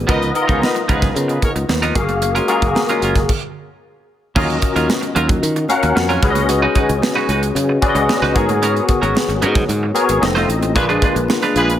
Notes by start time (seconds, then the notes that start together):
Already playing: B3 F#4 G#4 D5 D#5
0.07 C#2 F3 B3 D#4 F4 A#4 B4 D#5, kick, closed hi-hat
0.21 muted clean electric guitar stroke, closed hi-hat
0.35 B3 D#4 A#4 D#5, muted clean electric guitar stroke, closed hi-hat
0.41 F4
0.47 C#2 F3 B3 D#4 G#4 A#4 C#5, kick, closed hi-hat
0.62 D#4 B4 D#5, muted clean electric guitar stroke, snare, high conga
0.75 muted clean electric guitar stroke, closed hi-hat
0.88 C#2 F3 B3 D#4 F4 G#4 A#4 B4, kick, closed hi-hat
1.01 muted clean electric guitar stroke, kick, snare, closed hi-hat, low conga
1.14 C#3, muted clean electric guitar stroke, closed hi-hat, muted conga
1.28 F4 G#4 B4, muted clean electric guitar stroke, closed hi-hat
1.42 G#4 A#4 C#5, kick, closed hi-hat, muted conga
1.56 C#2, muted clean electric guitar stroke, closed hi-hat
1.69 D#2, muted clean electric guitar stroke, snare, high conga
1.82 F3 B3 D#4 A#4, closed hi-hat
1.95 F#1 A#3 F#4 G#4 F5, muted clean electric guitar stroke, kick, closed hi-hat, high conga
2.08 muted clean electric guitar stroke, closed hi-hat, high conga
2.22 muted clean electric guitar stroke, closed hi-hat, muted conga
2.35 G#3 C#4 F4 A#4, closed hi-hat
2.47 G#3 A#3 C#4 F4 F#4 G#4 A#4, closed hi-hat
2.62 F#1, muted clean electric guitar stroke, kick, closed hi-hat
2.75 muted clean electric guitar stroke, snare, high conga
2.89 G#3 C#4 F4 A#4, closed hi-hat
3.02 F#1 G#3 C#4 F4 A#4, closed hi-hat
3.16 muted clean electric guitar stroke, kick, snare, closed hi-hat
3.29 kick, crash
4.36 D#2 F#3 C#4 F4 F#4 A#4 D#5, kick, crash, muted conga
4.49 muted clean electric guitar stroke, closed hi-hat
4.62 muted clean electric guitar stroke, kick, closed hi-hat
4.76 D#2 F#3 C#4 F4 A#4, closed hi-hat
4.89 muted clean electric guitar stroke, snare, high conga
5.01 muted clean electric guitar stroke, closed hi-hat
5.15 D#2 F#3 C#4 F4 A#4, closed hi-hat
5.28 muted clean electric guitar stroke, kick, closed hi-hat, low conga
5.43 D#3, muted clean electric guitar stroke, closed hi-hat
5.56 muted clean electric guitar stroke, closed hi-hat
5.68 C#4 F#4 A#4 F5 F#5, closed hi-hat, muted conga
5.83 D#2, muted clean electric guitar stroke, closed hi-hat
5.96 F2, muted clean electric guitar stroke, snare, high conga
6.09 F#3 C#4 F4 A#4, closed hi-hat
6.22 C#2 C#4 F#4 G#4 B4 C#5, muted clean electric guitar stroke, kick, closed hi-hat
6.30 D#5
6.35 muted clean electric guitar stroke, closed hi-hat, high conga
6.49 muted clean electric guitar stroke, closed hi-hat, muted conga
6.62 G#3 D#4 F#4 B4
6.75 G#3 D#4 F#4 B4, kick, closed hi-hat
6.89 C#2, muted clean electric guitar stroke, closed hi-hat
7.02 muted clean electric guitar stroke, snare, high conga
7.16 G#3 D#4 F#4 B4
7.29 C#2 G#3 D#4 F#4 B4, closed hi-hat
7.42 muted clean electric guitar stroke, closed hi-hat
7.55 C#3, muted clean electric guitar stroke, closed hi-hat, low conga
7.69 muted clean electric guitar stroke
7.81 C#4 F#4 G#4 B4 D5, kick, closed hi-hat, muted conga
7.89 D#5
7.95 C#2, muted clean electric guitar stroke, closed hi-hat
8.09 muted clean electric guitar stroke, snare, high conga
8.22 C#2 G#3 D#4 F#4 B4, snare
8.34 G#2 B3 F#4 G#4 A#4 C#5, muted clean electric guitar stroke, kick, closed hi-hat
8.48 muted clean electric guitar stroke, closed hi-hat, high conga
8.62 B3 C#4 F#4 A#4, closed hi-hat
8.76 muted clean electric guitar stroke, closed hi-hat
8.88 muted clean electric guitar stroke, kick, closed hi-hat
9.02 G#1 B3 C#4 F#4 A#4, closed hi-hat
9.15 muted clean electric guitar stroke, snare, high conga
9.28 G#1, muted clean electric guitar stroke, closed hi-hat
9.42 G#2 B3 C#4 F#4 A#4, closed hi-hat
9.55 muted clean electric guitar stroke, kick, snare, closed hi-hat, low conga
9.69 G#2, muted clean electric guitar stroke, closed hi-hat, muted conga
9.83 muted clean electric guitar stroke
9.94 B3 F#4 G#4 A#4 C#5, closed hi-hat, muted conga
10.09 G#1, muted clean electric guitar stroke, closed hi-hat
10.20 F1 C4 D#4 F4 A4 D#5, muted clean electric guitar stroke, snare, high conga
10.35 A3 D#4 F4 C5, snare, closed hi-hat
10.49 A1, muted clean electric guitar stroke, closed hi-hat
10.61 muted clean electric guitar stroke, closed hi-hat, high conga
10.75 A#1 A#3 D4 F4 G#4 B4, muted clean electric guitar stroke, kick, closed hi-hat, muted conga
10.89 G#3 D4 F4 B4, closed hi-hat
11.02 G#3 D4 F4 B4, kick, closed hi-hat
11.16 A#1, muted clean electric guitar stroke, closed hi-hat
11.28 muted clean electric guitar stroke, snare, high conga
11.42 G#3 D4 F4 B4, closed hi-hat
11.56 A#1 G#3 D4 F4 G#4 B4, closed hi-hat
11.69 muted clean electric guitar stroke, closed hi-hat